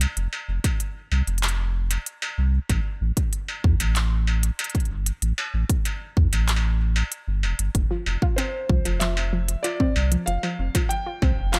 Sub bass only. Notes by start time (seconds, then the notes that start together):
0.17 F1
0.48 F1
1.12 C2
1.27 F1
2.38 C2
2.69 A1
3.01 A1
3.64 E2
3.80 A1
4.91 G1
5.22 A1
5.54 A1
6.17 E2
6.33 A1
7.28 G1
7.43 E1
7.59 G1
7.75 F1
8.06 F1
8.70 C2
8.85 F1
9.96 C2
10.27 F1
10.59 F1
11.22 C2
11.38 F1